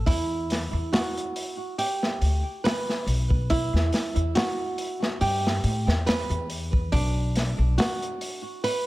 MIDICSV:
0, 0, Header, 1, 4, 480
1, 0, Start_track
1, 0, Key_signature, 1, "minor"
1, 0, Tempo, 857143
1, 38, Time_signature, 4, 2, 24, 8
1, 4965, End_track
2, 0, Start_track
2, 0, Title_t, "Nylon-string guitar"
2, 0, Program_c, 0, 24
2, 35, Note_on_c, 0, 64, 101
2, 495, Note_off_c, 0, 64, 0
2, 519, Note_on_c, 0, 66, 70
2, 976, Note_off_c, 0, 66, 0
2, 999, Note_on_c, 0, 67, 75
2, 1457, Note_off_c, 0, 67, 0
2, 1479, Note_on_c, 0, 71, 67
2, 1707, Note_off_c, 0, 71, 0
2, 1960, Note_on_c, 0, 64, 94
2, 2417, Note_off_c, 0, 64, 0
2, 2437, Note_on_c, 0, 66, 71
2, 2896, Note_off_c, 0, 66, 0
2, 2917, Note_on_c, 0, 67, 78
2, 3376, Note_off_c, 0, 67, 0
2, 3396, Note_on_c, 0, 71, 69
2, 3626, Note_off_c, 0, 71, 0
2, 3875, Note_on_c, 0, 62, 97
2, 4335, Note_off_c, 0, 62, 0
2, 4356, Note_on_c, 0, 66, 70
2, 4815, Note_off_c, 0, 66, 0
2, 4837, Note_on_c, 0, 71, 82
2, 4965, Note_off_c, 0, 71, 0
2, 4965, End_track
3, 0, Start_track
3, 0, Title_t, "Upright bass"
3, 0, Program_c, 1, 32
3, 38, Note_on_c, 1, 40, 87
3, 383, Note_off_c, 1, 40, 0
3, 408, Note_on_c, 1, 40, 82
3, 505, Note_off_c, 1, 40, 0
3, 1238, Note_on_c, 1, 38, 73
3, 1353, Note_off_c, 1, 38, 0
3, 1716, Note_on_c, 1, 35, 84
3, 2062, Note_off_c, 1, 35, 0
3, 2089, Note_on_c, 1, 40, 80
3, 2185, Note_off_c, 1, 40, 0
3, 2328, Note_on_c, 1, 40, 86
3, 2425, Note_off_c, 1, 40, 0
3, 2917, Note_on_c, 1, 43, 79
3, 3131, Note_off_c, 1, 43, 0
3, 3157, Note_on_c, 1, 45, 87
3, 3272, Note_off_c, 1, 45, 0
3, 3287, Note_on_c, 1, 40, 98
3, 3497, Note_off_c, 1, 40, 0
3, 3527, Note_on_c, 1, 40, 97
3, 3856, Note_off_c, 1, 40, 0
3, 3879, Note_on_c, 1, 35, 91
3, 4224, Note_off_c, 1, 35, 0
3, 4247, Note_on_c, 1, 35, 81
3, 4344, Note_off_c, 1, 35, 0
3, 4965, End_track
4, 0, Start_track
4, 0, Title_t, "Drums"
4, 38, Note_on_c, 9, 36, 103
4, 41, Note_on_c, 9, 46, 83
4, 94, Note_off_c, 9, 36, 0
4, 97, Note_off_c, 9, 46, 0
4, 280, Note_on_c, 9, 46, 57
4, 291, Note_on_c, 9, 38, 41
4, 336, Note_off_c, 9, 46, 0
4, 347, Note_off_c, 9, 38, 0
4, 523, Note_on_c, 9, 46, 88
4, 526, Note_on_c, 9, 38, 104
4, 579, Note_off_c, 9, 46, 0
4, 582, Note_off_c, 9, 38, 0
4, 658, Note_on_c, 9, 42, 43
4, 714, Note_off_c, 9, 42, 0
4, 761, Note_on_c, 9, 46, 62
4, 817, Note_off_c, 9, 46, 0
4, 1001, Note_on_c, 9, 46, 80
4, 1057, Note_off_c, 9, 46, 0
4, 1136, Note_on_c, 9, 38, 40
4, 1192, Note_off_c, 9, 38, 0
4, 1241, Note_on_c, 9, 46, 54
4, 1297, Note_off_c, 9, 46, 0
4, 1485, Note_on_c, 9, 46, 92
4, 1492, Note_on_c, 9, 38, 104
4, 1541, Note_off_c, 9, 46, 0
4, 1548, Note_off_c, 9, 38, 0
4, 1621, Note_on_c, 9, 38, 41
4, 1677, Note_off_c, 9, 38, 0
4, 1722, Note_on_c, 9, 46, 63
4, 1778, Note_off_c, 9, 46, 0
4, 1850, Note_on_c, 9, 36, 92
4, 1906, Note_off_c, 9, 36, 0
4, 1959, Note_on_c, 9, 46, 77
4, 1965, Note_on_c, 9, 36, 101
4, 2015, Note_off_c, 9, 46, 0
4, 2021, Note_off_c, 9, 36, 0
4, 2103, Note_on_c, 9, 38, 40
4, 2159, Note_off_c, 9, 38, 0
4, 2198, Note_on_c, 9, 46, 59
4, 2206, Note_on_c, 9, 38, 52
4, 2254, Note_off_c, 9, 46, 0
4, 2262, Note_off_c, 9, 38, 0
4, 2329, Note_on_c, 9, 42, 41
4, 2385, Note_off_c, 9, 42, 0
4, 2438, Note_on_c, 9, 46, 90
4, 2448, Note_on_c, 9, 38, 118
4, 2494, Note_off_c, 9, 46, 0
4, 2504, Note_off_c, 9, 38, 0
4, 2677, Note_on_c, 9, 46, 58
4, 2733, Note_off_c, 9, 46, 0
4, 2814, Note_on_c, 9, 38, 45
4, 2870, Note_off_c, 9, 38, 0
4, 2917, Note_on_c, 9, 46, 73
4, 2973, Note_off_c, 9, 46, 0
4, 3061, Note_on_c, 9, 38, 50
4, 3117, Note_off_c, 9, 38, 0
4, 3157, Note_on_c, 9, 46, 57
4, 3213, Note_off_c, 9, 46, 0
4, 3294, Note_on_c, 9, 38, 48
4, 3350, Note_off_c, 9, 38, 0
4, 3399, Note_on_c, 9, 46, 88
4, 3408, Note_on_c, 9, 38, 114
4, 3455, Note_off_c, 9, 46, 0
4, 3464, Note_off_c, 9, 38, 0
4, 3530, Note_on_c, 9, 42, 38
4, 3586, Note_off_c, 9, 42, 0
4, 3638, Note_on_c, 9, 46, 62
4, 3694, Note_off_c, 9, 46, 0
4, 3769, Note_on_c, 9, 36, 94
4, 3825, Note_off_c, 9, 36, 0
4, 3877, Note_on_c, 9, 46, 84
4, 3881, Note_on_c, 9, 36, 103
4, 3933, Note_off_c, 9, 46, 0
4, 3937, Note_off_c, 9, 36, 0
4, 4119, Note_on_c, 9, 46, 67
4, 4126, Note_on_c, 9, 38, 42
4, 4175, Note_off_c, 9, 46, 0
4, 4182, Note_off_c, 9, 38, 0
4, 4358, Note_on_c, 9, 46, 87
4, 4368, Note_on_c, 9, 38, 108
4, 4414, Note_off_c, 9, 46, 0
4, 4424, Note_off_c, 9, 38, 0
4, 4493, Note_on_c, 9, 42, 43
4, 4549, Note_off_c, 9, 42, 0
4, 4598, Note_on_c, 9, 46, 64
4, 4654, Note_off_c, 9, 46, 0
4, 4839, Note_on_c, 9, 46, 75
4, 4895, Note_off_c, 9, 46, 0
4, 4965, End_track
0, 0, End_of_file